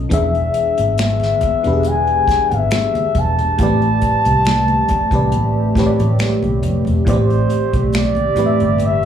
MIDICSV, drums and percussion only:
0, 0, Header, 1, 2, 480
1, 0, Start_track
1, 0, Key_signature, 0, "minor"
1, 0, Tempo, 869565
1, 60, Time_signature, 4, 2, 24, 8
1, 4996, End_track
2, 0, Start_track
2, 0, Title_t, "Drums"
2, 57, Note_on_c, 9, 62, 28
2, 62, Note_on_c, 9, 36, 92
2, 63, Note_on_c, 9, 42, 89
2, 112, Note_off_c, 9, 62, 0
2, 117, Note_off_c, 9, 36, 0
2, 118, Note_off_c, 9, 42, 0
2, 192, Note_on_c, 9, 42, 31
2, 247, Note_off_c, 9, 42, 0
2, 298, Note_on_c, 9, 42, 64
2, 353, Note_off_c, 9, 42, 0
2, 426, Note_on_c, 9, 63, 44
2, 429, Note_on_c, 9, 42, 50
2, 482, Note_off_c, 9, 63, 0
2, 484, Note_off_c, 9, 42, 0
2, 539, Note_on_c, 9, 42, 67
2, 548, Note_on_c, 9, 26, 78
2, 549, Note_on_c, 9, 38, 101
2, 595, Note_off_c, 9, 42, 0
2, 603, Note_off_c, 9, 26, 0
2, 604, Note_off_c, 9, 38, 0
2, 661, Note_on_c, 9, 63, 55
2, 666, Note_on_c, 9, 42, 28
2, 675, Note_on_c, 9, 38, 29
2, 716, Note_off_c, 9, 63, 0
2, 721, Note_off_c, 9, 42, 0
2, 730, Note_off_c, 9, 38, 0
2, 778, Note_on_c, 9, 42, 60
2, 778, Note_on_c, 9, 64, 69
2, 790, Note_on_c, 9, 36, 76
2, 833, Note_off_c, 9, 42, 0
2, 833, Note_off_c, 9, 64, 0
2, 846, Note_off_c, 9, 36, 0
2, 907, Note_on_c, 9, 42, 45
2, 962, Note_off_c, 9, 42, 0
2, 1012, Note_on_c, 9, 63, 60
2, 1018, Note_on_c, 9, 42, 69
2, 1067, Note_off_c, 9, 63, 0
2, 1073, Note_off_c, 9, 42, 0
2, 1145, Note_on_c, 9, 42, 33
2, 1200, Note_off_c, 9, 42, 0
2, 1256, Note_on_c, 9, 36, 94
2, 1261, Note_on_c, 9, 62, 29
2, 1262, Note_on_c, 9, 42, 65
2, 1267, Note_on_c, 9, 38, 34
2, 1311, Note_off_c, 9, 36, 0
2, 1316, Note_off_c, 9, 62, 0
2, 1317, Note_off_c, 9, 42, 0
2, 1322, Note_off_c, 9, 38, 0
2, 1388, Note_on_c, 9, 63, 64
2, 1389, Note_on_c, 9, 42, 40
2, 1443, Note_off_c, 9, 63, 0
2, 1444, Note_off_c, 9, 42, 0
2, 1494, Note_on_c, 9, 42, 69
2, 1499, Note_on_c, 9, 62, 28
2, 1500, Note_on_c, 9, 26, 82
2, 1501, Note_on_c, 9, 38, 102
2, 1549, Note_off_c, 9, 42, 0
2, 1554, Note_off_c, 9, 62, 0
2, 1555, Note_off_c, 9, 26, 0
2, 1557, Note_off_c, 9, 38, 0
2, 1629, Note_on_c, 9, 63, 66
2, 1630, Note_on_c, 9, 42, 35
2, 1684, Note_off_c, 9, 63, 0
2, 1685, Note_off_c, 9, 42, 0
2, 1738, Note_on_c, 9, 36, 84
2, 1738, Note_on_c, 9, 42, 62
2, 1744, Note_on_c, 9, 62, 30
2, 1744, Note_on_c, 9, 64, 66
2, 1793, Note_off_c, 9, 42, 0
2, 1794, Note_off_c, 9, 36, 0
2, 1800, Note_off_c, 9, 62, 0
2, 1800, Note_off_c, 9, 64, 0
2, 1868, Note_on_c, 9, 64, 63
2, 1869, Note_on_c, 9, 42, 49
2, 1923, Note_off_c, 9, 64, 0
2, 1925, Note_off_c, 9, 42, 0
2, 1979, Note_on_c, 9, 42, 79
2, 1981, Note_on_c, 9, 36, 95
2, 2034, Note_off_c, 9, 42, 0
2, 2036, Note_off_c, 9, 36, 0
2, 2108, Note_on_c, 9, 42, 31
2, 2164, Note_off_c, 9, 42, 0
2, 2216, Note_on_c, 9, 42, 65
2, 2219, Note_on_c, 9, 36, 79
2, 2224, Note_on_c, 9, 62, 29
2, 2272, Note_off_c, 9, 42, 0
2, 2275, Note_off_c, 9, 36, 0
2, 2279, Note_off_c, 9, 62, 0
2, 2347, Note_on_c, 9, 42, 51
2, 2355, Note_on_c, 9, 63, 49
2, 2402, Note_off_c, 9, 42, 0
2, 2410, Note_off_c, 9, 63, 0
2, 2457, Note_on_c, 9, 42, 66
2, 2466, Note_on_c, 9, 26, 82
2, 2467, Note_on_c, 9, 38, 103
2, 2512, Note_off_c, 9, 42, 0
2, 2521, Note_off_c, 9, 26, 0
2, 2522, Note_off_c, 9, 38, 0
2, 2583, Note_on_c, 9, 42, 28
2, 2585, Note_on_c, 9, 63, 56
2, 2638, Note_off_c, 9, 42, 0
2, 2640, Note_off_c, 9, 63, 0
2, 2696, Note_on_c, 9, 42, 59
2, 2699, Note_on_c, 9, 62, 33
2, 2699, Note_on_c, 9, 64, 67
2, 2709, Note_on_c, 9, 36, 72
2, 2751, Note_off_c, 9, 42, 0
2, 2754, Note_off_c, 9, 62, 0
2, 2754, Note_off_c, 9, 64, 0
2, 2765, Note_off_c, 9, 36, 0
2, 2821, Note_on_c, 9, 36, 88
2, 2825, Note_on_c, 9, 42, 43
2, 2876, Note_off_c, 9, 36, 0
2, 2880, Note_off_c, 9, 42, 0
2, 2936, Note_on_c, 9, 42, 64
2, 2938, Note_on_c, 9, 63, 62
2, 2991, Note_off_c, 9, 42, 0
2, 2993, Note_off_c, 9, 63, 0
2, 3176, Note_on_c, 9, 36, 95
2, 3183, Note_on_c, 9, 42, 64
2, 3184, Note_on_c, 9, 62, 29
2, 3187, Note_on_c, 9, 38, 35
2, 3231, Note_off_c, 9, 36, 0
2, 3238, Note_off_c, 9, 42, 0
2, 3239, Note_off_c, 9, 62, 0
2, 3242, Note_off_c, 9, 38, 0
2, 3309, Note_on_c, 9, 42, 42
2, 3312, Note_on_c, 9, 63, 65
2, 3364, Note_off_c, 9, 42, 0
2, 3367, Note_off_c, 9, 63, 0
2, 3417, Note_on_c, 9, 42, 65
2, 3422, Note_on_c, 9, 26, 78
2, 3424, Note_on_c, 9, 38, 103
2, 3472, Note_off_c, 9, 42, 0
2, 3478, Note_off_c, 9, 26, 0
2, 3479, Note_off_c, 9, 38, 0
2, 3546, Note_on_c, 9, 63, 65
2, 3553, Note_on_c, 9, 42, 34
2, 3601, Note_off_c, 9, 63, 0
2, 3609, Note_off_c, 9, 42, 0
2, 3658, Note_on_c, 9, 62, 31
2, 3658, Note_on_c, 9, 64, 64
2, 3660, Note_on_c, 9, 42, 61
2, 3713, Note_off_c, 9, 62, 0
2, 3713, Note_off_c, 9, 64, 0
2, 3715, Note_off_c, 9, 42, 0
2, 3780, Note_on_c, 9, 64, 61
2, 3793, Note_on_c, 9, 42, 47
2, 3835, Note_off_c, 9, 64, 0
2, 3848, Note_off_c, 9, 42, 0
2, 3902, Note_on_c, 9, 36, 101
2, 3904, Note_on_c, 9, 42, 87
2, 3957, Note_off_c, 9, 36, 0
2, 3959, Note_off_c, 9, 42, 0
2, 4031, Note_on_c, 9, 42, 34
2, 4086, Note_off_c, 9, 42, 0
2, 4138, Note_on_c, 9, 62, 27
2, 4140, Note_on_c, 9, 42, 62
2, 4193, Note_off_c, 9, 62, 0
2, 4195, Note_off_c, 9, 42, 0
2, 4269, Note_on_c, 9, 63, 47
2, 4270, Note_on_c, 9, 36, 91
2, 4270, Note_on_c, 9, 42, 53
2, 4324, Note_off_c, 9, 63, 0
2, 4325, Note_off_c, 9, 36, 0
2, 4325, Note_off_c, 9, 42, 0
2, 4375, Note_on_c, 9, 62, 29
2, 4379, Note_on_c, 9, 42, 67
2, 4388, Note_on_c, 9, 26, 87
2, 4389, Note_on_c, 9, 38, 104
2, 4430, Note_off_c, 9, 62, 0
2, 4434, Note_off_c, 9, 42, 0
2, 4443, Note_off_c, 9, 26, 0
2, 4444, Note_off_c, 9, 38, 0
2, 4499, Note_on_c, 9, 63, 60
2, 4505, Note_on_c, 9, 42, 30
2, 4554, Note_off_c, 9, 63, 0
2, 4560, Note_off_c, 9, 42, 0
2, 4614, Note_on_c, 9, 62, 33
2, 4614, Note_on_c, 9, 64, 72
2, 4618, Note_on_c, 9, 42, 59
2, 4670, Note_off_c, 9, 62, 0
2, 4670, Note_off_c, 9, 64, 0
2, 4673, Note_off_c, 9, 42, 0
2, 4748, Note_on_c, 9, 42, 44
2, 4803, Note_off_c, 9, 42, 0
2, 4849, Note_on_c, 9, 63, 59
2, 4855, Note_on_c, 9, 42, 66
2, 4904, Note_off_c, 9, 63, 0
2, 4910, Note_off_c, 9, 42, 0
2, 4996, End_track
0, 0, End_of_file